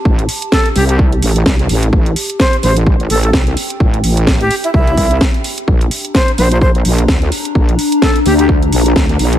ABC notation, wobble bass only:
X:1
M:4/4
L:1/8
Q:"Swing 16ths" 1/4=128
K:Aphr
V:1 name="Wobble bass" clef=bass
A,,, z2 C,,2 A,,, C,, A,,, | A,,, z2 A,,,2 A,,, C,, z | A,,, A,,,2 z C,, C,, z2 | B,,, z2 B,,,2 B,,, D,, z |
B,,, z2 D,,2 B,,, D,, B,,, |]